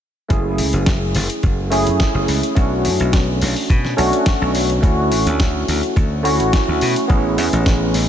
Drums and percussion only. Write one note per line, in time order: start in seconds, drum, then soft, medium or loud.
0.30 kick loud
0.30 closed hi-hat soft
0.58 open hi-hat loud
0.73 closed hi-hat medium
0.86 kick medium
0.86 snare loud
0.86 closed hi-hat soft
1.15 open hi-hat medium
1.30 closed hi-hat medium
1.43 kick loud
1.43 closed hi-hat medium
1.72 open hi-hat medium
1.87 closed hi-hat medium
2.00 kick loud
2.00 snare loud
2.00 closed hi-hat medium
2.28 open hi-hat loud
2.43 closed hi-hat medium
2.56 kick loud
2.56 closed hi-hat soft
2.85 open hi-hat loud
3.00 closed hi-hat medium
3.13 kick loud
3.13 snare loud
3.13 closed hi-hat soft
3.42 open hi-hat loud
3.56 open hi-hat medium
3.70 kick loud
3.70 closed hi-hat soft
3.85 snare soft
3.98 open hi-hat loud
4.13 closed hi-hat medium
4.26 kick loud
4.26 snare loud
4.26 closed hi-hat medium
4.55 open hi-hat loud
4.70 closed hi-hat medium
4.83 kick loud
4.83 closed hi-hat soft
5.12 open hi-hat loud
5.27 closed hi-hat medium
5.40 kick loud
5.40 snare loud
5.40 closed hi-hat soft
5.68 open hi-hat loud
5.83 closed hi-hat medium
5.96 kick loud
5.96 closed hi-hat soft
6.25 open hi-hat loud
6.40 closed hi-hat medium
6.53 kick loud
6.53 snare loud
6.53 closed hi-hat soft
6.81 open hi-hat loud
6.96 closed hi-hat medium
7.10 kick loud
7.10 closed hi-hat soft
7.38 open hi-hat loud
7.53 closed hi-hat medium
7.66 kick loud
7.66 snare loud
7.66 closed hi-hat soft
7.94 open hi-hat loud